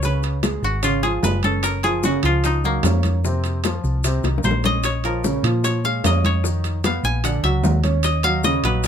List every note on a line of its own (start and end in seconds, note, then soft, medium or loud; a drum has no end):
0.00 0.57 C#2 medium
0.00 0.36 C#3 medium
0.00 0.70 F4 medium
0.00 0.11 A#4 medium
0.00 1.50 C#5 medium
0.00 0.39 D#5 medium
0.00 high bongo medium
0.00 high conga soft
0.00 maracas medium
0.04 0.37 C#4 medium
0.04 1.23 B4 medium
0.23 high bongo soft
0.23 high conga soft
0.23 high timbale medium
0.23 maracas soft
0.43 0.76 G#3 medium
0.43 0.76 G#4 medium
0.43 high bongo medium
0.43 high conga medium
0.43 high timbale medium
0.43 low timbale medium
0.43 maracas medium
0.62 1.19 G#1 medium
0.62 0.90 F#4 medium
0.62 high bongo soft
0.62 high conga soft
0.62 maracas soft
0.83 1.00 C#3 medium
0.83 1.00 C#4 medium
0.83 2.11 F4 medium
0.83 high bongo medium
0.83 high conga soft
0.83 high timbale medium
0.83 maracas medium
1.03 1.36 F3 medium
1.03 1.36 F4 medium
1.03 1.50 G#4 medium
1.03 high bongo soft
1.03 high conga soft
1.03 high timbale medium
1.03 maracas soft
1.23 2.17 F#1 medium
1.23 1.69 B4 medium
1.23 high bongo soft
1.23 low bongo medium
1.23 high conga medium
1.23 low timbale medium
1.23 maracas medium
1.43 1.77 C#4 medium
1.43 1.69 A4 medium
1.43 1.77 C#5 medium
1.43 high conga medium
1.43 high timbale medium
1.43 maracas soft
1.63 3.47 A#4 medium
1.63 high bongo medium
1.63 high conga soft
1.63 high timbale medium
1.63 maracas medium
1.83 2.00 F3 medium
1.83 2.00 F4 medium
1.83 3.81 G#4 medium
1.83 high bongo soft
1.83 high conga soft
1.83 high timbale medium
1.83 maracas soft
2.03 2.20 C#3 medium
2.03 2.21 C#4 medium
2.03 2.31 F#4 medium
2.03 high bongo medium
2.03 high conga medium
2.03 low timbale medium
2.03 maracas medium
2.23 2.80 C#2 medium
2.23 2.57 F3 medium
2.23 2.57 F4 medium
2.23 4.44 F4 medium
2.23 high bongo soft
2.23 high conga soft
2.23 high timbale medium
2.23 maracas soft
2.44 4.79 D#4 medium
2.44 high bongo medium
2.44 high conga soft
2.44 high timbale medium
2.44 maracas medium
2.64 2.81 F#3 medium
2.64 5.44 A#3 medium
2.64 2.81 F#4 medium
2.64 high bongo soft
2.64 high conga soft
2.64 maracas soft
2.83 3.78 F2 medium
2.83 3.17 C#4 medium
2.83 3.17 C#5 medium
2.83 high bongo soft
2.83 low bongo medium
2.83 high conga medium
2.83 high timbale medium
2.83 low timbale medium
2.83 maracas medium
3.03 high conga medium
3.03 high timbale medium
3.03 maracas soft
3.25 3.58 C3 medium
3.25 3.58 C4 medium
3.25 high bongo medium
3.25 high conga soft
3.25 maracas medium
3.44 high bongo soft
3.44 high conga soft
3.44 high timbale medium
3.44 maracas soft
3.64 3.98 F3 medium
3.64 3.98 F4 medium
3.64 high bongo medium
3.64 high conga medium
3.64 high timbale medium
3.64 low timbale medium
3.64 maracas medium
3.84 4.21 C2 medium
3.84 high bongo soft
3.84 high conga soft
3.84 maracas soft
4.04 4.21 C3 medium
4.04 4.21 C4 medium
4.04 high bongo medium
4.04 high conga soft
4.04 high timbale medium
4.04 maracas medium
4.24 4.42 C2 medium
4.24 4.57 D#3 medium
4.24 4.57 D#4 medium
4.24 high bongo medium
4.24 high conga soft
4.24 high timbale medium
4.24 maracas soft
4.38 low bongo medium
4.43 5.38 A#1 medium
4.43 4.91 C5 medium
4.43 high conga medium
4.43 low timbale medium
4.43 maracas medium
4.51 low bongo medium
4.64 4.97 C#4 medium
4.64 4.97 C#5 medium
4.64 6.06 D#5 loud
4.64 low bongo medium
4.64 high conga medium
4.64 high timbale medium
4.64 maracas soft
4.83 5.64 C#5 medium
4.83 high bongo medium
4.83 high conga soft
4.83 high timbale medium
4.83 maracas medium
5.04 5.21 F3 medium
5.04 5.21 F4 medium
5.04 6.89 A#4 medium
5.04 high bongo soft
5.04 high conga soft
5.04 high timbale medium
5.04 maracas soft
5.24 5.41 C#3 medium
5.24 5.41 C#4 medium
5.24 high bongo medium
5.24 high conga medium
5.24 low timbale medium
5.24 maracas medium
5.43 6.00 A#2 medium
5.43 5.77 F3 medium
5.43 5.77 F4 medium
5.43 high bongo soft
5.43 high timbale medium
5.43 maracas soft
5.64 6.25 C#5 medium
5.64 high bongo medium
5.64 high conga soft
5.64 high timbale medium
5.64 maracas medium
5.84 6.00 G#3 medium
5.84 6.01 G#4 medium
5.84 6.85 F5 loud
5.84 high bongo soft
5.84 high conga soft
5.84 maracas soft
6.04 6.98 F2 medium
6.04 6.37 C#4 medium
6.04 6.37 C#5 medium
6.04 7.50 D#5 medium
6.04 high bongo soft
6.04 low bongo medium
6.04 high conga medium
6.04 high timbale medium
6.04 low timbale medium
6.04 maracas medium
6.24 7.91 C#5 medium
6.24 high conga medium
6.24 high timbale medium
6.24 maracas soft
6.44 6.77 D#3 medium
6.44 6.77 D#4 medium
6.44 high bongo medium
6.44 maracas medium
6.64 high bongo soft
6.64 high conga soft
6.64 high timbale medium
6.64 maracas soft
6.84 7.17 B3 medium
6.84 7.17 B4 medium
6.84 7.31 F5 medium
6.84 high bongo medium
6.84 high conga medium
6.84 high timbale medium
6.84 low timbale medium
6.84 maracas medium
7.03 7.41 A#1 medium
7.03 8.35 G#5 loud
7.03 high bongo soft
7.03 high conga soft
7.03 maracas soft
7.24 7.40 D3 medium
7.24 7.41 D4 medium
7.24 8.30 F#5 medium
7.24 high bongo medium
7.24 high conga soft
7.24 high timbale medium
7.24 maracas medium
7.43 7.62 C#2 medium
7.43 7.77 F#3 medium
7.43 7.77 F#4 medium
7.43 8.10 E5 medium
7.43 high bongo soft
7.43 high conga soft
7.43 high timbale medium
7.43 maracas soft
7.63 8.58 D#2 medium
7.63 high bongo soft
7.63 low bongo medium
7.63 high conga medium
7.63 low timbale medium
7.63 maracas medium
7.84 8.17 C#4 medium
7.84 8.17 C#5 medium
7.84 high conga medium
7.84 high timbale medium
7.84 maracas soft
8.03 8.44 D#5 medium
8.03 high bongo medium
8.03 high conga soft
8.03 high timbale medium
8.03 maracas medium
8.23 8.41 F#3 medium
8.23 8.41 F#4 medium
8.23 8.87 F5 loud
8.23 high bongo soft
8.23 high conga soft
8.23 high timbale medium
8.23 maracas soft
8.44 8.61 C#3 medium
8.44 8.61 C#4 medium
8.44 8.87 D#5 medium
8.44 high bongo medium
8.44 high conga medium
8.44 low timbale medium
8.44 maracas medium
8.63 8.87 A#1 medium
8.63 8.87 F#3 medium
8.63 8.87 F#4 medium
8.63 8.87 B4 medium
8.63 high bongo soft
8.63 high conga soft
8.63 high timbale loud
8.63 maracas soft
8.84 high timbale medium
8.84 maracas medium